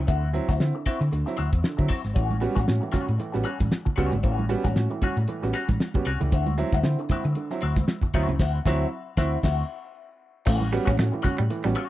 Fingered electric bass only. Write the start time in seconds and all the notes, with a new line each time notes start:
0.08 D2
0.49 D2
0.61 D3
0.86 muted fingered electric bass stroke
1.01 D3
1.12 D2
1.39 D2
1.53 E2
1.78 D3
2.04 G#1
2.16 A1
2.57 A1
2.69 A2
2.94 muted fingered electric bass stroke
3.09 A2
3.35 A1
3.60 A1
3.98 C#2
4.12 G#1
4.24 A1
4.65 A1
4.76 A2
5.02 muted fingered electric bass stroke
5.17 A2
5.43 A1
5.69 A1
6.06 C2
6.21 C#2
6.32 D2
6.73 D2
6.84 D3
7.10 muted fingered electric bass stroke
7.25 D3
7.63 D2
8.14 D2
8.29 C#2
8.40 D2
8.66 D2
9.17 D2
9.43 D2
10.47 A1
10.88 A1
10.99 A2
11.25 muted fingered electric bass stroke
11.39 A2
11.65 A1